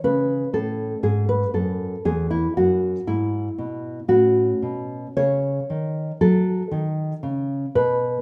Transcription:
nylon-string guitar
0.04 C#3 C#4 B4
0.53 A2 A4
1.03 G#2 G#4
1.29 B4
1.54 F#2 A4
2.05 E2 G#4
2.31 E4
2.57 F#2 F#4
3.07 G#2 E4
3.58 B2
4.08 A2 C#4 F#4
4.62 B2
5.17 C#3 C#5
5.70 D#3
6.21 F#3 A4
6.71 D#3
7.23 C#3
7.75 B2 B4

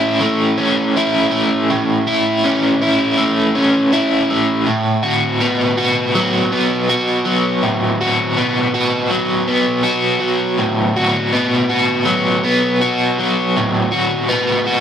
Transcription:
overdriven electric guitar
Already playing: A2 A3 C#4 E4
0.21 A3
0.58 C#4
0.97 E4
1.32 A3
1.70 A2
2.07 E4
2.44 C#4
2.82 E4
3.18 A3
3.55 C#4
3.93 E4
4.30 A3
4.67 A2
5.03 F#4
5.40 B3
5.77 F#4
6.15 F#3
6.52 B3
6.89 F#4
7.26 F#3
7.63 A2
8.01 F#4
8.37 B3
8.74 F#4
9.10 F#3
9.47 B3
9.83 F#4
10.21 F#3
10.58 A2
10.96 F#4
11.33 B3
11.70 F#4
12.06 F#3
12.45 B3
12.82 F#4
13.19 F#3
13.57 A2
13.92 F#4
14.29 B3
14.66 F#4

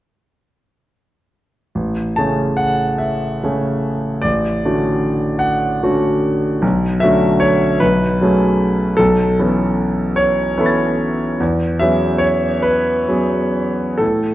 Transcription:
grand piano
1.75 A1
2.16 C#3 A3 C#4 G#4 A5
2.57 F#5
2.98 E5
3.43 C#3 A3 C#4 G#4
4.21 A1 D5
4.65 D3 A3 C#4 F#4
5.39 F#5
5.83 D3 A3 C#4 F#4
6.62 B1
7.00 D3 A3 C#4 F#4 E5
7.40 C#5
7.80 B1 B4
8.21 F#3 A3 C#4 G#4
8.97 B1 A4
9.39 E3 B3 C#4 A4
10.16 C#5
10.57 E3 B3 C#4 A4 E5 B5
10.64 C#6 A6
11.40 E2
11.80 F#3 B3 C#4 G#4 E5
12.19 C#5
12.63 B4
13.09 F#3 B3 C#4 G#4
13.98 A2 A4

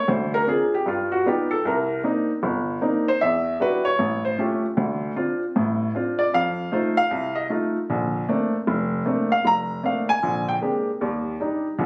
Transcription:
upright piano
0.08 D2 D3 C5
0.34 A#4
0.47 C4 D4 F4 G#4
0.74 G4
0.86 G2 F4
1.12 F#4
1.26 G3 B3 D#4 F4 G4
1.51 A4
1.65 C2 A#4
2.04 A#3 C4 D4 D#4
2.43 G1
2.81 A#3 C4 D4 D#4
3.08 C5
3.21 E2 E5
3.60 G3 D4 E4 F#4 B4
3.85 C#5
3.99 A1
4.25 C5
4.38 A3 C#4 F4 G4
4.77 D2 D3
5.16 C4 D4 F4
5.56 A1 A2
5.95 C4 D4 F4
6.19 D5
6.34 F2 F5
6.72 A3 D#4 F4 C5
6.97 F5
7.11 C2
7.35 D#5
7.50 A3 D#4 F4
7.90 A#1 D3
8.29 A3 A#3 C4 D4
8.67 F1
9.06 A3 A#3 C4 D4
9.32 F5
9.45 F1 A#5
9.83 A3 A#3 C4 D4 F5
10.09 G#5
10.23 A#1 D3
10.49 G5
10.61 G#3 A#3 C4 D4 G4
11.01 D#2 G3
11.40 G3 D4 D#4
11.78 A#1 D3

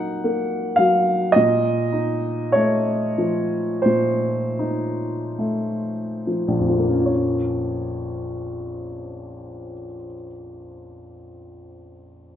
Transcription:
upright piano
Already playing: F#3 A#3 D#4 F#5
0.24 A#3
0.76 F#3 F5
1.32 A#2 D#5
1.93 D#4
2.52 A3 C#5
3.18 F3
3.82 A#2 C5
4.59 D#4
5.38 A3
6.27 F3
6.48 A#1
6.59 F2
6.69 F3
6.79 A#3
6.89 C#4
6.99 F4
7.06 C#5

